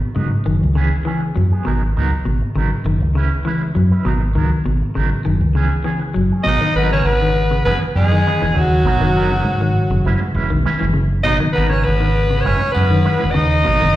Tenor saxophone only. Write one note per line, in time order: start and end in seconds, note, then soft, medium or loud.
6.47 6.75 D#4 medium
6.78 6.92 B3 medium
6.93 7.06 C#4 medium
7.04 7.64 B3 medium
7.64 7.78 B3 medium
7.96 8.57 G#3 medium
8.55 10.35 F#3 medium
11.25 11.38 D#4 medium
11.54 11.70 B3 medium
11.72 11.88 C#4 medium
11.86 12.46 B3 medium
12.45 12.74 C#4 medium
12.74 13.36 B3 medium
13.35 13.96 D#4 medium